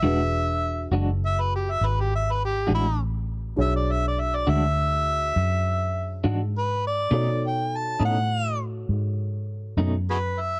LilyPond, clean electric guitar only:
\new Staff \with { instrumentName = "Clean electric guitar" } { \time 12/8 \key e \mixolydian \tempo 4. = 68 <e gis d' fis'>8 r4 <e gis d' fis'>8 r2 r8 <e gis d' fis'>8 r4 | r4. <e gis d' fis'>8 r2 r8 <e gis d' fis'>8 r4 | <b, a cis' dis'>8 r4 <b, a cis' dis'>8 r2 r8 <b, a cis' dis'>8 r4 | }